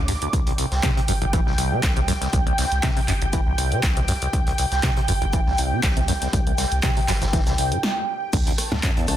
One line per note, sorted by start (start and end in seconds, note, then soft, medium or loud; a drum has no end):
0.00 0.17 D2 medium
0.00 0.34 D6 medium
0.08 0.13 G2 loud
0.08 snare soft
0.08 open hi-hat loud
0.08 shaker medium
0.22 0.28 D2 medium
0.22 closed hi-hat soft
0.33 0.41 C2 medium
0.33 0.44 C2 medium
0.33 8.34 G5 medium
0.33 kick loud
0.33 closed hi-hat medium
0.33 shaker medium
0.46 0.53 C2 medium
0.46 closed hi-hat soft
0.58 0.66 C2 medium
0.58 open hi-hat loud
0.58 shaker medium
0.71 0.81 C2 medium
0.71 snare medium
0.71 closed hi-hat soft
0.83 0.91 C3 loud
0.83 kick loud
0.83 snare loud
0.83 clap loud
0.83 closed hi-hat medium
0.83 shaker medium
0.97 1.00 C3 medium
0.97 closed hi-hat soft
1.08 1.42 G1 loud
1.08 1.13 F#2 loud
1.08 open hi-hat loud
1.08 shaker medium
1.22 1.25 B1 loud
1.22 closed hi-hat soft
1.33 1.41 E3 medium
1.33 kick loud
1.33 closed hi-hat medium
1.33 shaker medium
1.47 1.53 C2 medium
1.47 1.56 C2 medium
1.47 snare soft
1.58 1.73 C2 medium
1.58 open hi-hat loud
1.58 shaker medium
1.71 1.81 C3 medium
1.83 2.17 C2 medium
1.83 kick loud
1.83 snare loud
1.83 clap loud
1.83 closed hi-hat medium
1.83 shaker medium
1.97 2.00 C3 medium
1.97 closed hi-hat soft
2.08 2.13 F#2 loud
2.08 snare soft
2.08 open hi-hat medium
2.08 shaker medium
2.21 2.28 C2 medium
2.21 snare soft
2.21 closed hi-hat soft
2.33 2.41 C2 medium
2.33 2.44 C2 loud
2.33 kick loud
2.33 closed hi-hat medium
2.33 shaker medium
2.46 2.53 C2 medium
2.46 closed hi-hat soft
2.58 2.66 C2 medium
2.58 snare medium
2.58 open hi-hat medium
2.58 shaker medium
2.72 2.81 C2 medium
2.72 closed hi-hat soft
2.83 2.91 C3 loud
2.83 kick loud
2.83 snare loud
2.83 clap loud
2.83 closed hi-hat medium
2.83 shaker medium
2.97 3.00 C3 medium
2.97 open hi-hat medium
3.08 3.42 G1 medium
3.08 3.13 F#2 loud
3.08 clap medium
3.08 open hi-hat loud
3.08 shaker medium
3.22 3.25 B1 loud
3.22 closed hi-hat soft
3.33 3.41 E3 medium
3.33 kick loud
3.33 closed hi-hat medium
3.33 shaker medium
3.47 3.53 C2 medium
3.47 3.56 C2 medium
3.58 3.73 C2 medium
3.58 open hi-hat loud
3.58 shaker medium
3.72 3.81 C3 medium
3.72 closed hi-hat soft
3.83 4.17 C2 medium
3.83 kick loud
3.83 snare loud
3.83 clap loud
3.83 closed hi-hat medium
3.83 shaker medium
3.97 4.01 C3 medium
3.97 closed hi-hat soft
4.08 4.13 F#2 loud
4.08 snare soft
4.08 open hi-hat loud
4.08 shaker medium
4.22 4.28 C2 medium
4.22 closed hi-hat medium
4.33 4.44 C2 loud
4.33 4.41 C2 medium
4.33 kick loud
4.33 closed hi-hat medium
4.33 shaker medium
4.47 4.53 C2 medium
4.47 closed hi-hat soft
4.58 4.66 C2 medium
4.58 open hi-hat loud
4.58 shaker medium
4.71 4.81 C2 medium
4.71 snare medium
4.71 closed hi-hat soft
4.83 4.91 C3 loud
4.83 kick loud
4.83 snare loud
4.83 clap loud
4.83 closed hi-hat medium
4.83 shaker medium
4.96 5.01 C3 medium
4.96 closed hi-hat soft
5.08 5.42 G1 loud
5.08 5.13 F#2 loud
5.08 open hi-hat loud
5.08 shaker medium
5.22 5.26 B1 loud
5.22 closed hi-hat soft
5.33 5.41 E3 medium
5.33 kick loud
5.33 closed hi-hat medium
5.33 shaker medium
5.46 5.56 C2 loud
5.46 5.53 C2 medium
5.46 snare soft
5.57 5.73 C2 medium
5.57 open hi-hat medium
5.57 shaker medium
5.72 5.81 C3 medium
5.83 6.17 C2 medium
5.83 kick loud
5.83 snare loud
5.83 clap loud
5.83 closed hi-hat medium
5.83 shaker medium
5.97 6.00 C3 medium
5.97 closed hi-hat medium
6.08 6.13 F#2 loud
6.08 snare soft
6.08 open hi-hat medium
6.08 shaker medium
6.21 6.28 C2 medium
6.21 snare soft
6.21 closed hi-hat medium
6.33 6.41 C2 medium
6.33 6.44 C2 loud
6.33 kick loud
6.33 closed hi-hat medium
6.33 shaker medium
6.47 6.53 C2 medium
6.47 closed hi-hat soft
6.58 6.66 C2 medium
6.58 snare medium
6.58 open hi-hat medium
6.58 shaker medium
6.72 6.81 C2 medium
6.72 closed hi-hat soft
6.82 6.91 C3 loud
6.82 kick loud
6.82 snare loud
6.82 clap loud
6.82 closed hi-hat medium
6.82 shaker medium
6.97 7.00 C3 medium
6.97 open hi-hat medium
7.08 7.42 G1 loud
7.08 7.13 F#2 loud
7.08 snare loud
7.08 clap medium
7.08 open hi-hat loud
7.08 shaker medium
7.22 7.25 B1 loud
7.22 snare medium
7.22 closed hi-hat soft
7.22 shaker medium
7.33 7.41 E3 medium
7.33 kick loud
7.33 snare medium
7.33 closed hi-hat medium
7.33 shaker medium
7.47 7.53 C2 medium
7.47 7.56 C2 medium
7.47 snare loud
7.47 closed hi-hat soft
7.47 shaker medium
7.58 7.73 C2 medium
7.58 open hi-hat loud
7.58 shaker medium
7.72 7.78 G2 medium
7.72 closed hi-hat soft
7.83 snare loud
8.33 8.38 D2 loud
8.33 8.44 D2 loud
8.33 9.17 A5 medium
8.33 kick loud
8.33 closed hi-hat medium
8.33 crash loud
8.33 shaker medium
8.47 8.53 D2 medium
8.47 closed hi-hat soft
8.58 cross-stick medium
8.58 open hi-hat loud
8.58 shaker medium
8.72 8.81 D2 medium
8.72 8.76 A2 loud
8.72 snare medium
8.72 snare soft
8.83 8.91 F#2 medium
8.83 kick loud
8.83 cross-stick soft
8.83 snare loud
8.83 clap loud
8.83 closed hi-hat medium
8.83 shaker medium
8.97 9.06 E2 medium
8.97 closed hi-hat soft
9.07 9.17 A1 loud
9.07 9.16 C#2 medium
9.07 cross-stick medium
9.07 open hi-hat loud
9.07 shaker medium